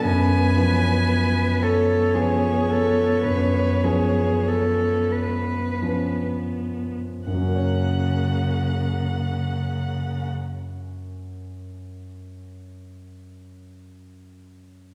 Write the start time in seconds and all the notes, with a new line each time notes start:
0.05 F#2 B3 B4 G#5
0.57 F3 C#4 B4
1.62 A4 C#5
2.14 F3 C#4 G#4 B4
2.70 A4
3.25 F#2 B4
3.84 F3 C#4 G#4 B4
4.48 A4
5.12 B4
5.82 F3 C#4 B4
7.27 F#2 C#3 A#3 F#5
7.34 F#3
7.41 C#4
7.48 A#4
7.55 C#5